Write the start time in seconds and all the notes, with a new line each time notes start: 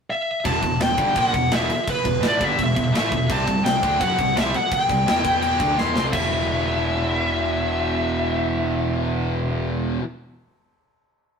0.10 E5
0.44 E1 E2 B2 E3 A5, kick, crash
0.62 E1 E2 B2, kick, crash
0.80 E1 E2 B2 G5, snare, crash
0.97 G1 G2 D3 G3, kick, crash
1.15 A#1 A#2 F3 A#3 F#5, kick, crash
1.34 E1 E2 B2, kick, crash
1.51 E1 E2 B2 E3 E5, snare, crash
1.70 crash
1.88 B4, kick, crash
2.05 E1 E2 B2, kick, crash
2.22 A1 A2 E3 A3, snare, crash
2.27 D5
2.41 G1 G2 D3 G3 E5, kick, crash
2.58 E1 E2 B2, kick, crash
2.64 E5
2.76 E1 E2 B2, kick, crash
2.92 A1 A2 E3 A3, snare, crash
2.97 E5
3.11 E1 E2 B2, kick, crash
3.29 C2 C3 G3 C4 A5, kick, crash
3.47 C2 C3 G3, kick, crash
3.65 C2 C3 G3 G5, snare, crash
3.83 D2 D3 A3 D4, kick, crash
4.01 F#2 F#3 C#4 F#4 F#5, kick, crash
4.18 C2 C3 G3, kick, crash
4.36 C2 C3 G3 C4 E5, snare, crash
4.54 F#5, crash
4.72 G5, kick, crash
4.89 C2 C3 G3, kick, crash
5.07 E2 E3 B3 E4, snare, crash
5.23 E2 E3 B3 E4, kick, crash
5.42 G5, crash
5.59 D2 D3 A3 D4, kick, crash
5.78 E2 E3 B3 E4 C6, snare
5.96 C2 C3 G3 C4, snare
6.12 E1 E2 B2 E3 E5, kick, crash